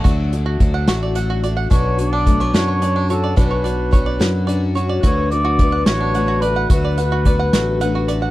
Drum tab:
HH |xxxxxx|xxxxxx|xxxxxx|xxxxxx|
SD |---o--|---o--|---o--|---o--|
BD |o-o---|o-o---|o-o---|o-o---|

HH |xxxxxx|
SD |---o--|
BD |o-o---|